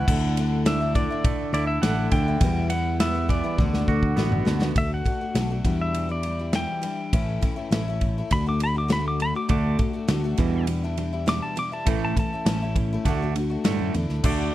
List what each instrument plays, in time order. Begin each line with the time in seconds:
Already playing: clean electric guitar E4, pedal steel guitar F#5
0.08 fingered electric bass D2, twelve-string acoustic guitar D3 A3 D4 E4, kick, crash
0.37 twelve-string acoustic guitar D3 A3 D4 E4, ride
0.65 twelve-string acoustic guitar D3 A3 D4 E4, pedal steel guitar E5, snare, ride
0.81 twelve-string acoustic guitar A3 D4 E4
0.95 twelve-string acoustic guitar D3 A3 D4 E4, pedal steel guitar D5, kick, ride
1.10 twelve-string acoustic guitar A3 D4 E4
1.25 clean electric guitar A3, kick, ride
1.53 fingered electric bass D2, twelve-string acoustic guitar D3 A3 D4 E4, pedal steel guitar D5, ride
1.67 pedal steel guitar E5
1.82 fingered electric bass A1, twelve-string acoustic guitar D3 A3 D4 E4, pedal steel guitar F#5, snare, ride
2.11 fingered electric bass D2, twelve-string acoustic guitar D3 A3 D4, pedal steel guitar G5, kick, ride
2.16 twelve-string acoustic guitar E4
2.28 twelve-string acoustic guitar A3 D4 E4
2.40 fingered electric bass E2, twelve-string acoustic guitar E2 B2 E3 G3 B3, kick, ride
2.45 twelve-string acoustic guitar E4
2.70 twelve-string acoustic guitar E3 G3 B3 E4, pedal steel guitar F#5, ride
3.00 twelve-string acoustic guitar E2 B2 E3 G3 B3 E4, pedal steel guitar E5, snare, ride
3.15 twelve-string acoustic guitar E3 G3 B3 E4
3.28 twelve-string acoustic guitar E3 G3 B3 E4, pedal steel guitar D5, kick, ride
3.44 twelve-string acoustic guitar E3 G3 B3 E4
3.58 fingered electric bass D2, twelve-string acoustic guitar D3 A3 B3 F#4, kick, high tom
3.74 snare
3.88 fingered electric bass D2, twelve-string acoustic guitar D3 A3 B3 F#4, kick
4.03 kick
4.17 fingered electric bass A1, twelve-string acoustic guitar D3 A3 B3 F#4, snare
4.32 mid tom
4.45 fingered electric bass D2, twelve-string acoustic guitar D3 A3 B3 F#4, snare
4.61 twelve-string acoustic guitar A3 B3 F#4, snare
4.76 fingered electric bass D2, twelve-string acoustic guitar D3 A3 D4 F#4, pedal steel guitar E5, kick, ride
4.94 pedal steel guitar F#5
5.05 twelve-string acoustic guitar D3 A3 D4 F#4, kick, ride
5.21 twelve-string acoustic guitar A3 D4 F#4
5.35 fingered electric bass B1, twelve-string acoustic guitar D3 A3 D4 F#4, snare, ride
5.51 twelve-string acoustic guitar A3 D4 F#4
5.64 twelve-string acoustic guitar E2 B2 E3 G3 D4 E4, fingered electric bass E2, kick, ride
5.81 pedal steel guitar E5
5.94 ride
6.09 twelve-string acoustic guitar E3 G3 D4 E4, pedal steel guitar D5
6.23 twelve-string acoustic guitar E3 G3 D4 E4, ride
6.39 twelve-string acoustic guitar E3 G3 D4 E4
6.53 twelve-string acoustic guitar E2 B2 E3 G3 D4 E4, pedal steel guitar G5, snare, ride
6.81 twelve-string acoustic guitar E3 G3 D4 E4, ride
7.13 fingered electric bass A1, twelve-string acoustic guitar A2 E3 A3 C#4 E4, kick, ride
7.41 twelve-string acoustic guitar E3 A3 C#4 E4, kick, ride
7.56 twelve-string acoustic guitar A3 C#4 E4
7.71 fingered electric bass A1, twelve-string acoustic guitar A2 E3 A3 C#4 E4, snare, ride
7.88 twelve-string acoustic guitar A3 C#4 E4
8.01 kick, ride
8.18 twelve-string acoustic guitar A3 C#4 E4
8.31 fingered electric bass D2, twelve-string acoustic guitar D3 A3 D4 F#4, pedal steel guitar B5, kick, ride
8.46 twelve-string acoustic guitar A3 D4 F#4, pedal steel guitar D6
8.59 twelve-string acoustic guitar D3 A3 D4 F#4, ride
8.64 pedal steel guitar B5
8.74 twelve-string acoustic guitar A3 D4 F#4, pedal steel guitar D6
8.88 twelve-string acoustic guitar D3 A3 D4 F#4, snare, ride
8.92 pedal steel guitar B5
9.08 pedal steel guitar D6
9.20 twelve-string acoustic guitar D3 A3 D4 F#4, pedal steel guitar B5, ride
9.35 twelve-string acoustic guitar A3 D4 F#4, pedal steel guitar D6
9.49 fingered electric bass D2, twelve-string acoustic guitar D3 A3 D4 F#4, pedal steel guitar D6, kick, ride
9.79 twelve-string acoustic guitar D3 A3 D4 F#4, kick, ride
9.93 twelve-string acoustic guitar A3 D4 F#4
10.08 fingered electric bass D2, twelve-string acoustic guitar D3 A3 D4 F#4, snare, ride
10.24 twelve-string acoustic guitar A3 D4 F#4
10.38 twelve-string acoustic guitar E2 B2 E3 G3 D4 E4, fingered electric bass E2, kick, ride
10.67 clean electric guitar E2 B2, ride
10.83 twelve-string acoustic guitar E3 G3 D4 E4
10.97 clean electric guitar E2 B2, twelve-string acoustic guitar E3 G3 D4 E4, ride
11.13 twelve-string acoustic guitar E3 G3 D4 E4
11.26 twelve-string acoustic guitar E2 B2 E3 G3 D4 E4, pedal steel guitar D6, snare, ride
11.43 pedal steel guitar A5
11.56 clean electric guitar E2 B2, twelve-string acoustic guitar E3 G3 D4 E4, pedal steel guitar D6, ride
11.72 twelve-string acoustic guitar E3 G3 D4 E4, pedal steel guitar A5
11.86 fingered electric bass A1, twelve-string acoustic guitar A2 E3 A3 C#4 E4, kick, ride
12.05 pedal steel guitar A5
12.16 clean electric guitar A2, twelve-string acoustic guitar E3 A3 C#4, pedal steel guitar A5, kick, ride
12.20 twelve-string acoustic guitar E4
12.33 twelve-string acoustic guitar A3 C#4 E4
12.46 fingered electric bass A1, twelve-string acoustic guitar A2 E3 A3 C#4 E4, snare, ride
12.62 twelve-string acoustic guitar A3 C#4 E4
12.76 clean electric guitar A2 E3, kick, ride
12.93 twelve-string acoustic guitar A3 C#4 E4
13.05 fingered electric bass D2, twelve-string acoustic guitar D3 A3 D4 F#4, kick, ride
13.22 twelve-string acoustic guitar A3 D4 F#4
13.36 twelve-string acoustic guitar D3 A3 D4 F#4, ride
13.50 twelve-string acoustic guitar A3 D4 F#4
13.64 fingered electric bass G2, twelve-string acoustic guitar A2 D3 A3 D4 E4, snare, ride
13.80 fingered electric bass F#2
13.94 fingered electric bass E2, clean electric guitar A2, twelve-string acoustic guitar D3 A3 D4 E4, ride
14.09 fingered electric bass D2, snare
14.24 fingered electric bass D2, twelve-string acoustic guitar D3 A3 D4 F#4, pedal steel guitar D5, kick, crash